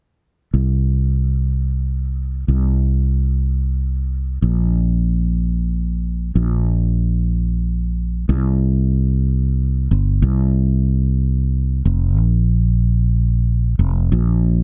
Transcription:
fretless electric bass
0.54 C2
2.48 C2
4.42 A#1
6.35 A#1
8.29 C2
9.91 G1
10.22 C2
11.85 F1
12.18 A#1
13.79 F1
14.12 A#1

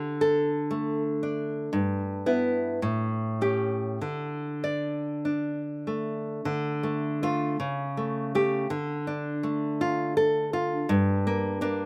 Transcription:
nylon-string guitar
Already playing: D3
0.21 A4
0.71 A3
1.23 D4
1.73 G2
2.26 B3 E4
2.82 A2
3.41 C#4 G4
4.01 D3
4.64 D5
5.25 D4
5.87 A3
6.45 D3
6.83 A3
7.23 A3 F4
7.60 C#3
7.97 A3
8.35 A3 G4
8.70 D3
9.07 D4
9.43 A3
9.81 F4
10.17 A4
10.53 F4
10.89 G2
11.27 A#3
11.61 A#3 D4

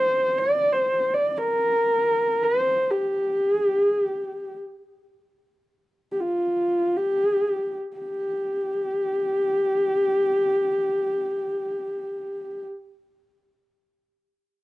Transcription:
horsehead fiddle
Already playing: C5
0.38 D5
0.73 C5
1.14 D5
1.37 A#4
2.43 C5
2.90 G4
3.49 G#4
3.65 G4
3.83 G#4
3.99 G4
6.12 G4
6.20 F4
6.97 G4
7.97 G4

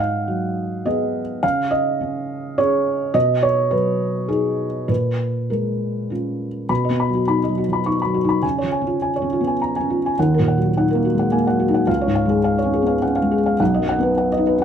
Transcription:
felt piano
Already playing: G#2 D#5 F5
0.28 F#3
0.85 B3 G#4 D#5
1.43 C#3 F5
1.71 D#5
2.01 C#4
2.58 C#4 G#4 C#5
3.14 B2 D#5
3.43 C#5
3.71 F#3 B4
4.28 D#4 G#4
4.88 A#2 B4
5.50 G#3 A#4
6.10 C#4 F4
6.69 B2 B5
6.84 D#5
6.90 B3
7.00 B5
7.09 F#3
7.15 F#4
7.28 D#4 B5
7.44 D#5
7.49 F#3
7.58 F#4
7.68 F3
7.73 B5
7.86 D#4 C#6
8.02 B5
8.06 F#3
8.14 F#4
8.25 D#4
8.29 B5
8.43 C#3 G#5
8.58 C#5
8.63 F3
8.72 G#5
8.81 C#4
8.87 F4
9.02 G#5
9.16 C#5
9.22 C#4
9.33 F4
9.41 B3
9.47 G#5
9.62 A#5
9.76 G#5
9.80 C#4
9.90 F4
10.06 G#5
10.19 D#2 F#5
10.34 A#4
10.39 A#2
10.48 F#5
10.58 F#3
10.63 F#4
10.77 D#4 F#5
10.91 A#4
10.95 A#3
11.05 F#4
11.15 G#3
11.19 F#5
11.32 A#3 G#5
11.47 F#3 F#5
11.59 F#4
11.69 D#4
11.74 F#5
11.87 C#2 F5
12.01 C#5
12.06 G#2
12.15 F5
12.25 G#3 G#4
12.44 F5
12.58 C#5
12.64 C#4
12.74 G#4
12.82 B3
12.87 F5
13.02 C#4 F#5
13.16 F5
13.22 G#3
13.31 G#4
13.46 F5
13.60 B1 F#5
13.74 D#5
13.79 F#2
13.89 F#5
13.99 B3 B4
14.18 F#5
14.32 D#5
14.37 D#4
14.47 B4
14.58 C#4

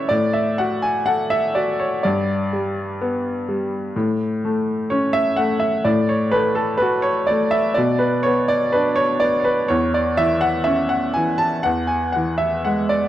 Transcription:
grand piano
Already playing: A2 C#4 E4 B4 C#5 D5 E5
0.09 A2 D5
0.33 E5
0.58 F#4 F#5
0.82 G#5
1.06 A4 F#5
1.30 E5
1.55 F#4 D5
1.80 C#5
2.03 G2 D5
2.53 G3
3.01 B3
3.48 G3
3.96 A2
4.45 A3
4.90 C#4 C#5
5.13 E5
5.36 A3 F#5
5.60 E5
5.84 A2 D5
6.09 C#5
6.31 A3 B4
6.55 A4
6.77 B4
6.82 F#4
7.02 C#5
7.27 A3 D5
7.51 E5
7.74 B2 D5
7.99 B4
8.23 B3 C#5
8.48 D5
8.72 D4 B4
8.96 C#5
9.20 B3 D5
9.40 C#5
9.44 B4
9.68 E2 C#5
9.94 D5
10.17 E3 E5
10.41 F#5
10.64 C#4 E5
10.89 F#5
11.14 E3 G#5
11.38 A5
11.63 E2 F#5
11.87 G#5
12.12 E3 F#5
12.38 E5
12.65 G#3 F#5
12.89 D5

